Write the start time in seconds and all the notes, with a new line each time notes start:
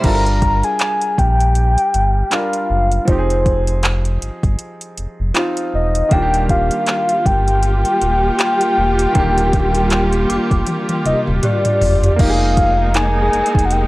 Already playing: E4 C5
0.01 G1 G3 D4 A#5, kick, closed hi-hat, crash
0.05 F4 A4
0.14 A#4
0.26 closed hi-hat
0.42 kick, closed hi-hat
0.63 G#5, closed hi-hat
0.79 clap, closed hi-hat
1.01 closed hi-hat
1.18 A#1 G5, kick, closed hi-hat
1.40 closed hi-hat
1.55 closed hi-hat
1.78 closed hi-hat
1.94 G1, closed hi-hat
2.30 G3 D4 F4 A#4 F5, clap, closed hi-hat
2.53 closed hi-hat
2.70 F#1
2.92 closed hi-hat
3.05 F1 F3 C4 C5, kick, closed hi-hat
3.10 D#4 G4
3.19 G#4
3.30 closed hi-hat
3.46 kick, closed hi-hat
3.67 closed hi-hat
3.83 clap, closed hi-hat
4.05 closed hi-hat
4.22 G1, closed hi-hat
4.43 G1, kick, closed hi-hat
4.59 closed hi-hat
4.81 closed hi-hat
4.97 F1, closed hi-hat
5.20 F1
5.34 F3 C4 D#4 F4, clap, closed hi-hat
5.57 closed hi-hat
5.74 E1 D#5
5.95 closed hi-hat
6.09 D#1 D#3 G3 A#3 F4 G4 F5 G5, kick, closed hi-hat
6.13 D4 F4
6.22 G4
6.34 closed hi-hat
6.49 F5, kick, closed hi-hat
6.71 closed hi-hat
6.87 clap, closed hi-hat
7.09 closed hi-hat
7.26 G1 G5, kick, closed hi-hat
7.48 closed hi-hat
7.63 closed hi-hat
7.85 closed hi-hat
8.01 D#1, closed hi-hat
8.39 clap, closed hi-hat
8.61 closed hi-hat
8.78 E1
8.99 closed hi-hat
9.12 D#1 D#3 A#3, kick, closed hi-hat
9.17 D3 G4
9.38 closed hi-hat
9.53 kick, closed hi-hat
9.75 closed hi-hat
9.90 clap, closed hi-hat
10.13 closed hi-hat
10.29 F1 D6, closed hi-hat
10.51 F1, kick, closed hi-hat
10.67 closed hi-hat, high tom
10.89 closed hi-hat, high tom
11.05 D#1 D#5, closed hi-hat, mid tom
11.27 D#1, mid tom
11.43 G4 D5, closed hi-hat, mid tom
11.65 closed hi-hat, mid tom
11.81 F#1, floor tom, open hi-hat
12.04 closed hi-hat, floor tom
12.16 F1 G#3 A#3 D#4, kick, closed hi-hat, crash
12.20 G4 F5
12.30 G#4
12.57 kick, closed hi-hat
12.94 D#4 G#5, clap, closed hi-hat
13.22 G#4
13.33 F1, closed hi-hat
13.44 A#4, closed hi-hat
13.55 F1, kick, closed hi-hat
13.65 F#5
13.70 G5, closed hi-hat